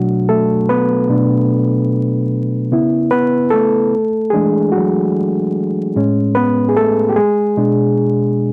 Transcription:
reed electric piano
Already playing: B2 F#3 A3 D4 F#4
0.29 A3 A4
0.69 B3 B4
1.09 B2 A3 D4
2.72 C#3 B3 E4
3.11 B3 B4
3.50 A3 A4
4.30 E3 G#3 A3 D4 G#4
4.72 F#3 F#4
5.96 A2 G#3 C#4
6.35 B3 B4
6.69 G#4
6.77 A3 A4
7.09 G4
7.16 G#3 G#4
7.57 B2 G#3 D4

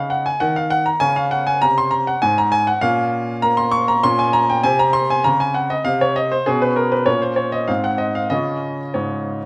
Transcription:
grand piano
Already playing: C#3 D#4 F5
0.10 F#5
0.26 G#5
0.40 D#3 F#5
0.56 F5
0.70 F#5
0.86 A#5
1.00 C#3 C#4 G#5
1.16 F5
1.31 F#5
1.47 G#5
1.62 C3 A#5
1.78 C6
1.91 A#5
2.07 F#5
2.22 G#2 G#5
2.38 A#5
2.52 G#5
2.67 F#5
2.81 A#2 C#4 F5
3.42 A#3 A#5
3.57 C6
3.72 C#6
3.88 A#5
4.03 A#2 C#4 C6
4.19 G#5
4.33 A#5
4.49 G5
4.64 C3 C4 G#5
4.79 A#5
4.93 C6
5.10 G#5
5.24 C#3 A#5
5.40 G#5
5.54 F#5
5.70 D#5
5.85 C3 F5
6.01 C#5
6.16 D#5
6.32 C5
6.46 B2 C#4 G#4
6.62 B4
6.76 A#4
6.92 B4
7.06 A#2 C#4 C#5
7.22 C5
7.36 C#5
7.52 D#5
7.68 G#2 C4 F5
7.84 F#5
7.98 D#5
8.15 F5
8.30 C#3 C#4 F4 D#5
8.94 G#2 C#5

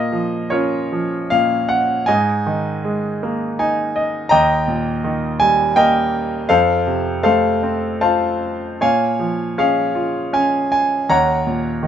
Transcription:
grand piano
Already playing: A#2 A#4 D#5
0.12 F3
0.50 C#4 F4 A#4 C#5
0.92 F3
1.30 A#2 F5
1.69 F#5
2.06 G#2 D#5 G#5
2.47 D#3
2.84 G#3
3.23 A#3
3.59 D#4 G#5
3.96 D#5
4.29 D#2 D#5 G5 A#5
4.68 A#2
5.04 D#3
5.40 G3 G#5
5.76 A#3 A#4 D#5 G5
6.49 F2 A4 C5 F5
6.87 C3
7.23 A3 A4 C5 F5
7.63 C4
8.01 F4 C5 F5 A5
8.81 A#2 C#5 F5 G#5
9.19 F3
9.58 C#4 G#4 C#5 F5
9.95 F4
10.33 C#4 G#5
10.72 G#5
11.09 D#2 C#5 F#5 A#5
11.47 A#2
11.83 D#3

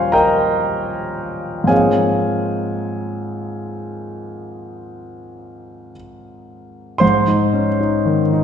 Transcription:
grand piano
Already playing: D#2 F3 G3 A#3 C#4 C5 C#5 F5 G5 G#5 A#5 C6 C#6 F6
0.12 A#4 D#5 G5 A#5
1.64 G#2 F3 G#3 A#3 C4 G#5
1.68 G#4 C#5 F5
6.98 G#2 C5 C6
7.28 D#4
7.53 C#4
7.80 D#4
8.05 D#3
8.33 D#4

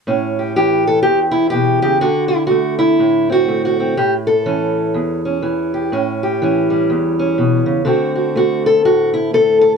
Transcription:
steel-string acoustic guitar
0.07 A2 C#4
0.39 G4
0.56 E3 G4
0.87 A4
1.03 E2 G4
1.31 E4
1.50 B2 G4
1.82 C#3 G4
2.01 D3 F#4
2.28 E4
2.47 F#4
2.51 A3
2.79 E4
2.99 A2
3.29 C4 F#4
3.48 A3
3.65 F#4
3.80 C4
3.97 A2 G4
4.27 A4
4.46 E3 C#4
4.94 E2
5.25 C#4
5.42 E3
5.74 G4
5.92 A2 C#4
6.23 G4
6.42 E3 C#4
6.70 G3
6.90 E2
7.19 C#4
7.38 B2
7.66 C#3
7.85 D3 A3 C4 F#4
8.15 F#4
8.36 A3 F#4
8.66 A4
8.85 A2 F#4
9.14 E4
9.33 A3 A4
9.61 A4

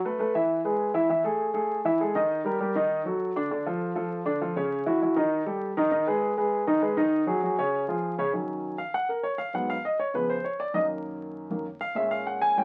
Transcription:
grand piano
0.05 A3 A4 B4
0.19 A3 A4 B4
0.35 E3 E4 E5
0.65 G#3 G#4 B4
0.94 E3 E4 E5
1.09 E3 E4 E5
1.24 A3 G#4 A4
1.54 A3 G#4 A4
1.85 E3 E4 E5
2.00 G#3 G#4 A4
2.15 D#3 D#4 D#5
2.45 G3 G4 A#4
2.60 G3 G4 A#4
2.75 D#3 D#4 D#5
3.05 F#3 F#4 A4
3.36 D3 D4 D5
3.51 D3 D4 D5
3.66 F3 F4 A4
3.95 F3 F4 A4
4.25 D3 D4 D5
4.41 F3 F4 A4
4.56 C#3 C#4 C#5
4.86 E3 E4 F#4
5.02 E3 E4 F#4
5.16 D#3 D#4 D#5
5.46 G3 G4 A4
5.77 D#3 D#4 D#5
5.91 D#3 D#4 D#5
6.07 G#3 G#4 B4
6.37 G#3 G#4 B4
6.67 D#3 D#4 D#5
6.82 G#3 G#4 B4
6.97 D#3 D#4 D#5
7.27 F#3 F#4 G#4
7.43 F#3 F#4 G#4
7.59 C#3 C#4 C#5
7.88 F3 F4 G#4
8.18 C#3 C#4 C#5
8.33 D#3 F#3 C#4
8.78 F5
8.94 F#5
9.09 A#4
9.23 C#5
9.38 F5
9.54 G#2 F#3 B3 F#5
9.70 F5
9.85 D#5
9.99 C#5
10.14 C#3 F3 B3 B4
10.30 C5
10.44 C#5
10.60 D5
10.74 F#2 D#3 A#3 D#5
11.50 F#2 D#3 A#3
11.81 F5
11.95 A#2 G#3 C#4 E5
12.11 F5
12.27 F#5
12.42 G#5
12.56 A2 G3 C#4 G5

